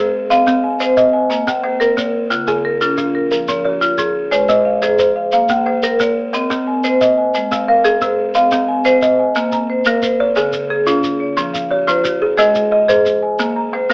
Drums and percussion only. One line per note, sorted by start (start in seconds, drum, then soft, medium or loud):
0.31 shekere medium
0.47 shekere medium
0.81 shekere medium
0.97 shekere medium
1.31 shekere soft
1.48 shekere medium
1.81 shekere medium
1.98 shekere medium
2.31 shekere medium
2.47 shekere medium
2.81 shekere medium
2.98 shekere medium
3.31 shekere medium
3.48 shekere medium
3.82 shekere medium
3.98 shekere medium
4.32 shekere medium
4.49 shekere medium
4.82 shekere medium
4.99 shekere medium
5.32 shekere medium
5.49 shekere medium
5.83 shekere medium
6.00 shekere medium
6.34 shekere medium
6.51 shekere medium
6.84 shekere medium
7.01 shekere medium
7.34 shekere medium
7.52 shekere medium
7.85 shekere medium
8.01 shekere medium
8.35 shekere medium
8.51 shekere medium
8.85 shekere medium
9.02 shekere medium
9.36 shekere soft
9.52 shekere medium
9.85 shekere medium
10.02 shekere medium
10.36 shekere medium
10.53 shekere medium
10.87 shekere medium
11.04 shekere medium
11.37 shekere medium
11.55 shekere medium
11.88 shekere medium
12.05 shekere medium
12.38 shekere medium
12.55 shekere medium
12.89 shekere medium
13.06 shekere medium
13.39 shekere medium
13.90 shekere medium